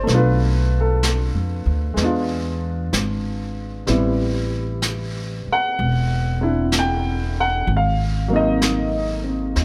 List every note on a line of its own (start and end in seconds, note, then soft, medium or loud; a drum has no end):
0.00 1.95 A3 medium
0.00 0.10 C5 medium
0.07 1.30 B1 medium
0.07 1.96 B3 medium
0.07 brush sweep soft
0.07 snare soft
0.11 1.99 D4 medium
0.11 2.01 F4 medium
0.17 0.74 B4 medium
0.81 1.98 A4 medium
1.03 brush sweep soft
1.03 snare soft
1.03 hi-hat pedal medium
1.34 1.63 F2 medium
1.66 1.95 D2 medium
1.94 2.88 E2 medium
1.94 3.86 G#3 medium
1.94 3.86 B3 soft
1.94 brush sweep soft
1.94 snare soft
2.01 3.90 D4 soft
2.01 3.91 F4 medium
2.93 3.84 G#1 medium
2.93 brush sweep soft
2.93 snare soft
2.93 hi-hat pedal soft
3.86 5.42 A1 medium
3.86 7.66 G3 soft
3.86 7.67 B3 soft
3.86 6.39 C4 soft
3.86 6.41 E4 medium
3.86 brush sweep soft
3.86 snare soft
4.82 brush sweep soft
4.82 snare soft
4.82 hi-hat pedal medium
5.47 muted upright bass stroke soft
5.52 6.71 F#5 medium
5.77 7.63 E1 medium
5.77 brush sweep soft
6.41 7.67 C4 soft
6.41 7.67 D4 soft
6.41 7.68 E4 medium
6.72 brush sweep soft
6.72 snare soft
6.72 hi-hat pedal soft
6.79 7.37 G5 medium
7.40 7.68 F#5 medium
7.67 9.52 G#1 medium
7.67 brush sweep soft
7.77 8.33 F5 medium
8.28 9.65 F#3 medium
8.28 9.65 A#3 medium
8.28 9.22 C4 soft
8.33 9.65 D#4 medium
8.33 9.54 D#5 medium
8.62 brush sweep soft
8.62 snare soft
8.62 hi-hat pedal medium
9.24 9.65 C4 soft
9.56 9.65 D#2 medium
9.56 brush sweep soft
9.56 snare soft